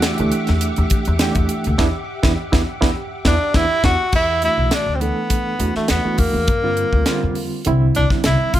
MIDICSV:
0, 0, Header, 1, 7, 480
1, 0, Start_track
1, 0, Key_signature, 1, "minor"
1, 0, Tempo, 585938
1, 1464, Time_signature, 4, 2, 24, 8
1, 7044, End_track
2, 0, Start_track
2, 0, Title_t, "String machine"
2, 0, Program_c, 0, 50
2, 0, Note_on_c, 0, 67, 70
2, 0, Note_on_c, 0, 76, 62
2, 0, Note_on_c, 0, 78, 65
2, 0, Note_on_c, 0, 86, 78
2, 3356, Note_off_c, 0, 86, 0
2, 3358, Note_off_c, 0, 76, 0
2, 3358, Note_off_c, 0, 78, 0
2, 3359, Note_off_c, 0, 67, 0
2, 7044, End_track
3, 0, Start_track
3, 0, Title_t, "Tenor saxophone"
3, 0, Program_c, 1, 66
3, 2679, Note_on_c, 1, 62, 86
3, 2918, Note_on_c, 1, 64, 96
3, 2930, Note_off_c, 1, 62, 0
3, 3147, Note_off_c, 1, 64, 0
3, 3151, Note_on_c, 1, 66, 93
3, 3371, Note_off_c, 1, 66, 0
3, 3402, Note_on_c, 1, 64, 93
3, 3616, Note_off_c, 1, 64, 0
3, 3637, Note_on_c, 1, 64, 91
3, 3881, Note_on_c, 1, 62, 87
3, 3893, Note_off_c, 1, 64, 0
3, 4053, Note_on_c, 1, 60, 57
3, 4066, Note_off_c, 1, 62, 0
3, 4101, Note_on_c, 1, 59, 85
3, 4113, Note_off_c, 1, 60, 0
3, 4708, Note_off_c, 1, 59, 0
3, 4721, Note_on_c, 1, 57, 70
3, 4823, Note_off_c, 1, 57, 0
3, 4834, Note_on_c, 1, 59, 74
3, 5069, Note_on_c, 1, 58, 87
3, 5081, Note_off_c, 1, 59, 0
3, 6288, Note_off_c, 1, 58, 0
3, 6520, Note_on_c, 1, 62, 70
3, 6626, Note_off_c, 1, 62, 0
3, 6766, Note_on_c, 1, 64, 75
3, 6994, Note_on_c, 1, 65, 87
3, 7007, Note_off_c, 1, 64, 0
3, 7044, Note_off_c, 1, 65, 0
3, 7044, End_track
4, 0, Start_track
4, 0, Title_t, "Reed electric piano"
4, 0, Program_c, 2, 4
4, 0, Note_on_c, 2, 52, 77
4, 0, Note_on_c, 2, 57, 70
4, 0, Note_on_c, 2, 62, 77
4, 0, Note_on_c, 2, 66, 83
4, 129, Note_off_c, 2, 52, 0
4, 130, Note_off_c, 2, 57, 0
4, 134, Note_off_c, 2, 62, 0
4, 136, Note_off_c, 2, 66, 0
4, 160, Note_on_c, 2, 52, 76
4, 164, Note_on_c, 2, 57, 75
4, 164, Note_on_c, 2, 62, 71
4, 165, Note_on_c, 2, 67, 80
4, 915, Note_off_c, 2, 52, 0
4, 917, Note_off_c, 2, 57, 0
4, 917, Note_off_c, 2, 62, 0
4, 918, Note_off_c, 2, 67, 0
4, 978, Note_on_c, 2, 52, 84
4, 988, Note_on_c, 2, 57, 74
4, 994, Note_on_c, 2, 62, 73
4, 1001, Note_on_c, 2, 67, 96
4, 1453, Note_off_c, 2, 62, 0
4, 1459, Note_on_c, 2, 64, 93
4, 1461, Note_off_c, 2, 52, 0
4, 1463, Note_on_c, 2, 59, 90
4, 1463, Note_on_c, 2, 62, 88
4, 1466, Note_off_c, 2, 57, 0
4, 1472, Note_off_c, 2, 67, 0
4, 1541, Note_off_c, 2, 64, 0
4, 1543, Note_off_c, 2, 59, 0
4, 1543, Note_off_c, 2, 62, 0
4, 1826, Note_on_c, 2, 64, 93
4, 1828, Note_on_c, 2, 59, 95
4, 1829, Note_on_c, 2, 62, 93
4, 1901, Note_off_c, 2, 64, 0
4, 1902, Note_off_c, 2, 59, 0
4, 1902, Note_off_c, 2, 62, 0
4, 2067, Note_on_c, 2, 62, 90
4, 2068, Note_on_c, 2, 59, 91
4, 2068, Note_on_c, 2, 64, 91
4, 2141, Note_off_c, 2, 62, 0
4, 2142, Note_off_c, 2, 59, 0
4, 2142, Note_off_c, 2, 64, 0
4, 2301, Note_on_c, 2, 62, 98
4, 2303, Note_on_c, 2, 59, 101
4, 2303, Note_on_c, 2, 64, 95
4, 2377, Note_off_c, 2, 62, 0
4, 2378, Note_off_c, 2, 59, 0
4, 2378, Note_off_c, 2, 64, 0
4, 2662, Note_on_c, 2, 64, 94
4, 2668, Note_on_c, 2, 62, 94
4, 2670, Note_on_c, 2, 59, 90
4, 2742, Note_off_c, 2, 64, 0
4, 2746, Note_off_c, 2, 62, 0
4, 2747, Note_off_c, 2, 59, 0
4, 2910, Note_on_c, 2, 59, 88
4, 2913, Note_on_c, 2, 62, 92
4, 2915, Note_on_c, 2, 64, 86
4, 2987, Note_off_c, 2, 59, 0
4, 2989, Note_off_c, 2, 62, 0
4, 2990, Note_off_c, 2, 64, 0
4, 3148, Note_on_c, 2, 59, 80
4, 3151, Note_on_c, 2, 62, 86
4, 3153, Note_on_c, 2, 64, 84
4, 3226, Note_off_c, 2, 59, 0
4, 3227, Note_off_c, 2, 62, 0
4, 3229, Note_off_c, 2, 64, 0
4, 3621, Note_on_c, 2, 52, 56
4, 3629, Note_on_c, 2, 57, 48
4, 3633, Note_on_c, 2, 62, 47
4, 3635, Note_on_c, 2, 66, 58
4, 4060, Note_off_c, 2, 52, 0
4, 4064, Note_off_c, 2, 57, 0
4, 4066, Note_off_c, 2, 62, 0
4, 4067, Note_off_c, 2, 66, 0
4, 4097, Note_on_c, 2, 52, 62
4, 4100, Note_on_c, 2, 57, 56
4, 4106, Note_on_c, 2, 62, 56
4, 4113, Note_on_c, 2, 69, 64
4, 4539, Note_off_c, 2, 52, 0
4, 4540, Note_off_c, 2, 57, 0
4, 4543, Note_off_c, 2, 62, 0
4, 4547, Note_off_c, 2, 69, 0
4, 4579, Note_on_c, 2, 52, 67
4, 4585, Note_on_c, 2, 57, 62
4, 4587, Note_on_c, 2, 62, 60
4, 4593, Note_on_c, 2, 66, 75
4, 4913, Note_off_c, 2, 52, 0
4, 4916, Note_off_c, 2, 57, 0
4, 4917, Note_off_c, 2, 62, 0
4, 4920, Note_off_c, 2, 66, 0
4, 4951, Note_on_c, 2, 57, 64
4, 4952, Note_on_c, 2, 52, 68
4, 4962, Note_on_c, 2, 62, 59
4, 4967, Note_on_c, 2, 66, 74
4, 5306, Note_off_c, 2, 57, 0
4, 5307, Note_off_c, 2, 52, 0
4, 5312, Note_off_c, 2, 62, 0
4, 5314, Note_off_c, 2, 66, 0
4, 5425, Note_on_c, 2, 50, 77
4, 5433, Note_on_c, 2, 55, 73
4, 5437, Note_on_c, 2, 60, 68
4, 5441, Note_on_c, 2, 65, 84
4, 5753, Note_off_c, 2, 50, 0
4, 5756, Note_off_c, 2, 55, 0
4, 5758, Note_off_c, 2, 60, 0
4, 5760, Note_off_c, 2, 65, 0
4, 5793, Note_on_c, 2, 50, 84
4, 5794, Note_on_c, 2, 55, 78
4, 5799, Note_on_c, 2, 60, 75
4, 5808, Note_on_c, 2, 65, 92
4, 6229, Note_off_c, 2, 50, 0
4, 6229, Note_off_c, 2, 55, 0
4, 6232, Note_off_c, 2, 60, 0
4, 6236, Note_off_c, 2, 65, 0
4, 6273, Note_on_c, 2, 50, 86
4, 6278, Note_on_c, 2, 55, 74
4, 6280, Note_on_c, 2, 60, 75
4, 6287, Note_on_c, 2, 64, 100
4, 6602, Note_off_c, 2, 50, 0
4, 6605, Note_off_c, 2, 55, 0
4, 6606, Note_off_c, 2, 60, 0
4, 6609, Note_off_c, 2, 64, 0
4, 6636, Note_on_c, 2, 50, 66
4, 6644, Note_on_c, 2, 55, 58
4, 6644, Note_on_c, 2, 60, 60
4, 6651, Note_on_c, 2, 64, 66
4, 7044, Note_off_c, 2, 50, 0
4, 7044, Note_off_c, 2, 55, 0
4, 7044, Note_off_c, 2, 60, 0
4, 7044, Note_off_c, 2, 64, 0
4, 7044, End_track
5, 0, Start_track
5, 0, Title_t, "Upright bass"
5, 0, Program_c, 3, 32
5, 0, Note_on_c, 3, 40, 80
5, 99, Note_off_c, 3, 40, 0
5, 158, Note_on_c, 3, 38, 75
5, 244, Note_off_c, 3, 38, 0
5, 400, Note_on_c, 3, 40, 83
5, 581, Note_off_c, 3, 40, 0
5, 638, Note_on_c, 3, 40, 84
5, 724, Note_off_c, 3, 40, 0
5, 881, Note_on_c, 3, 40, 87
5, 1061, Note_off_c, 3, 40, 0
5, 1116, Note_on_c, 3, 40, 82
5, 1202, Note_off_c, 3, 40, 0
5, 1366, Note_on_c, 3, 38, 80
5, 1448, Note_off_c, 3, 38, 0
5, 1472, Note_on_c, 3, 40, 86
5, 1561, Note_off_c, 3, 40, 0
5, 1832, Note_on_c, 3, 40, 89
5, 1916, Note_off_c, 3, 40, 0
5, 2072, Note_on_c, 3, 40, 81
5, 2156, Note_off_c, 3, 40, 0
5, 2312, Note_on_c, 3, 40, 76
5, 2396, Note_off_c, 3, 40, 0
5, 2670, Note_on_c, 3, 40, 86
5, 2759, Note_off_c, 3, 40, 0
5, 2904, Note_on_c, 3, 40, 83
5, 2996, Note_off_c, 3, 40, 0
5, 3147, Note_on_c, 3, 40, 94
5, 3238, Note_off_c, 3, 40, 0
5, 3382, Note_on_c, 3, 40, 81
5, 3663, Note_off_c, 3, 40, 0
5, 3749, Note_on_c, 3, 35, 70
5, 3837, Note_off_c, 3, 35, 0
5, 3984, Note_on_c, 3, 38, 70
5, 4170, Note_off_c, 3, 38, 0
5, 4587, Note_on_c, 3, 40, 84
5, 4682, Note_off_c, 3, 40, 0
5, 4832, Note_on_c, 3, 40, 73
5, 4925, Note_off_c, 3, 40, 0
5, 5069, Note_on_c, 3, 40, 83
5, 5163, Note_off_c, 3, 40, 0
5, 5191, Note_on_c, 3, 40, 76
5, 5279, Note_off_c, 3, 40, 0
5, 5310, Note_on_c, 3, 43, 76
5, 5590, Note_off_c, 3, 43, 0
5, 5675, Note_on_c, 3, 38, 74
5, 5763, Note_off_c, 3, 38, 0
5, 5925, Note_on_c, 3, 41, 75
5, 6105, Note_off_c, 3, 41, 0
5, 6281, Note_on_c, 3, 36, 88
5, 6461, Note_off_c, 3, 36, 0
5, 6527, Note_on_c, 3, 36, 82
5, 6617, Note_off_c, 3, 36, 0
5, 6766, Note_on_c, 3, 36, 79
5, 6856, Note_off_c, 3, 36, 0
5, 6998, Note_on_c, 3, 36, 78
5, 7044, Note_off_c, 3, 36, 0
5, 7044, End_track
6, 0, Start_track
6, 0, Title_t, "Muted upright bass strokes"
6, 748, Note_on_c, 9, 29, 34
6, 829, Note_off_c, 9, 29, 0
6, 4716, Note_on_c, 9, 29, 33
6, 4798, Note_off_c, 9, 29, 0
6, 4956, Note_on_c, 9, 29, 30
6, 5038, Note_off_c, 9, 29, 0
6, 7044, End_track
7, 0, Start_track
7, 0, Title_t, "Drums"
7, 19, Note_on_c, 9, 42, 81
7, 20, Note_on_c, 9, 38, 100
7, 101, Note_off_c, 9, 42, 0
7, 102, Note_off_c, 9, 38, 0
7, 147, Note_on_c, 9, 42, 40
7, 229, Note_off_c, 9, 42, 0
7, 259, Note_on_c, 9, 42, 55
7, 341, Note_off_c, 9, 42, 0
7, 385, Note_on_c, 9, 42, 37
7, 387, Note_on_c, 9, 38, 31
7, 467, Note_off_c, 9, 42, 0
7, 469, Note_off_c, 9, 38, 0
7, 499, Note_on_c, 9, 42, 82
7, 581, Note_off_c, 9, 42, 0
7, 626, Note_on_c, 9, 42, 38
7, 708, Note_off_c, 9, 42, 0
7, 737, Note_on_c, 9, 42, 68
7, 745, Note_on_c, 9, 36, 84
7, 819, Note_off_c, 9, 42, 0
7, 827, Note_off_c, 9, 36, 0
7, 861, Note_on_c, 9, 42, 41
7, 943, Note_off_c, 9, 42, 0
7, 976, Note_on_c, 9, 42, 82
7, 978, Note_on_c, 9, 38, 99
7, 1058, Note_off_c, 9, 42, 0
7, 1060, Note_off_c, 9, 38, 0
7, 1105, Note_on_c, 9, 42, 36
7, 1110, Note_on_c, 9, 36, 66
7, 1187, Note_off_c, 9, 42, 0
7, 1192, Note_off_c, 9, 36, 0
7, 1220, Note_on_c, 9, 42, 58
7, 1301, Note_off_c, 9, 42, 0
7, 1345, Note_on_c, 9, 42, 37
7, 1427, Note_off_c, 9, 42, 0
7, 1462, Note_on_c, 9, 38, 81
7, 1466, Note_on_c, 9, 36, 93
7, 1544, Note_off_c, 9, 38, 0
7, 1547, Note_off_c, 9, 36, 0
7, 1830, Note_on_c, 9, 36, 89
7, 1830, Note_on_c, 9, 38, 84
7, 1912, Note_off_c, 9, 36, 0
7, 1912, Note_off_c, 9, 38, 0
7, 2072, Note_on_c, 9, 36, 87
7, 2073, Note_on_c, 9, 38, 90
7, 2154, Note_off_c, 9, 36, 0
7, 2155, Note_off_c, 9, 38, 0
7, 2312, Note_on_c, 9, 36, 89
7, 2312, Note_on_c, 9, 38, 90
7, 2394, Note_off_c, 9, 36, 0
7, 2394, Note_off_c, 9, 38, 0
7, 2661, Note_on_c, 9, 38, 92
7, 2665, Note_on_c, 9, 36, 85
7, 2743, Note_off_c, 9, 38, 0
7, 2747, Note_off_c, 9, 36, 0
7, 2902, Note_on_c, 9, 38, 90
7, 2903, Note_on_c, 9, 36, 85
7, 2984, Note_off_c, 9, 38, 0
7, 2985, Note_off_c, 9, 36, 0
7, 3143, Note_on_c, 9, 36, 81
7, 3143, Note_on_c, 9, 38, 81
7, 3225, Note_off_c, 9, 36, 0
7, 3225, Note_off_c, 9, 38, 0
7, 3378, Note_on_c, 9, 49, 83
7, 3383, Note_on_c, 9, 36, 95
7, 3460, Note_off_c, 9, 49, 0
7, 3464, Note_off_c, 9, 36, 0
7, 3620, Note_on_c, 9, 42, 55
7, 3702, Note_off_c, 9, 42, 0
7, 3859, Note_on_c, 9, 42, 72
7, 3861, Note_on_c, 9, 38, 94
7, 3941, Note_off_c, 9, 42, 0
7, 3943, Note_off_c, 9, 38, 0
7, 4106, Note_on_c, 9, 42, 48
7, 4188, Note_off_c, 9, 42, 0
7, 4342, Note_on_c, 9, 42, 73
7, 4344, Note_on_c, 9, 36, 69
7, 4424, Note_off_c, 9, 42, 0
7, 4426, Note_off_c, 9, 36, 0
7, 4584, Note_on_c, 9, 42, 58
7, 4666, Note_off_c, 9, 42, 0
7, 4710, Note_on_c, 9, 38, 27
7, 4792, Note_off_c, 9, 38, 0
7, 4819, Note_on_c, 9, 42, 79
7, 4820, Note_on_c, 9, 38, 95
7, 4901, Note_off_c, 9, 42, 0
7, 4902, Note_off_c, 9, 38, 0
7, 5062, Note_on_c, 9, 46, 65
7, 5067, Note_on_c, 9, 36, 69
7, 5144, Note_off_c, 9, 46, 0
7, 5149, Note_off_c, 9, 36, 0
7, 5306, Note_on_c, 9, 42, 75
7, 5308, Note_on_c, 9, 36, 94
7, 5388, Note_off_c, 9, 42, 0
7, 5390, Note_off_c, 9, 36, 0
7, 5545, Note_on_c, 9, 42, 53
7, 5626, Note_off_c, 9, 42, 0
7, 5674, Note_on_c, 9, 36, 57
7, 5756, Note_off_c, 9, 36, 0
7, 5782, Note_on_c, 9, 42, 70
7, 5783, Note_on_c, 9, 38, 92
7, 5864, Note_off_c, 9, 42, 0
7, 5865, Note_off_c, 9, 38, 0
7, 6024, Note_on_c, 9, 46, 60
7, 6106, Note_off_c, 9, 46, 0
7, 6265, Note_on_c, 9, 42, 70
7, 6347, Note_off_c, 9, 42, 0
7, 6511, Note_on_c, 9, 42, 56
7, 6593, Note_off_c, 9, 42, 0
7, 6638, Note_on_c, 9, 38, 31
7, 6639, Note_on_c, 9, 36, 69
7, 6720, Note_off_c, 9, 38, 0
7, 6721, Note_off_c, 9, 36, 0
7, 6748, Note_on_c, 9, 42, 69
7, 6750, Note_on_c, 9, 38, 99
7, 6830, Note_off_c, 9, 42, 0
7, 6832, Note_off_c, 9, 38, 0
7, 6993, Note_on_c, 9, 46, 69
7, 6994, Note_on_c, 9, 36, 72
7, 7044, Note_off_c, 9, 36, 0
7, 7044, Note_off_c, 9, 46, 0
7, 7044, End_track
0, 0, End_of_file